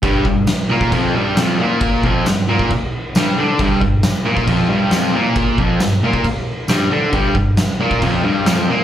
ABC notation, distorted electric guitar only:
X:1
M:4/4
L:1/8
Q:1/4=135
K:Gm
V:1 name="Distorted electric guitar" clef=bass
[G,,G,] G,, z [B,,B,] [F,,F,] [G,,G,] [F,,F,] [B,,B,]- | [B,,B,] [F,,F,] G,, [B,,B,] z2 [G,,G,] [D,D] | [G,,G,] G,, z [B,,B,] [F,,F,] [G,,G,] [F,,F,] [B,,B,]- | [B,,B,] [F,,F,] G,, [B,,B,] z2 [G,,G,] [D,D] |
[G,,G,] G,, z [B,,B,] [F,,F,] [G,,G,] [F,,F,] [B,,B,] |]